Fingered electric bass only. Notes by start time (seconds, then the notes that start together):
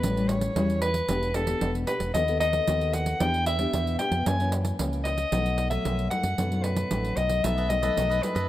0.03 A1
0.56 E2
1.08 E1
1.61 E1
2.00 E1
2.14 D#2
2.68 D#2
3.21 E2
3.73 E2
4.11 F2
4.26 F#2
4.79 C#2
5.32 B1
5.85 B1
6.24 F#2
6.38 F#2
6.91 A1
7.17 B1
7.44 B1
7.97 B1
8.35 F#2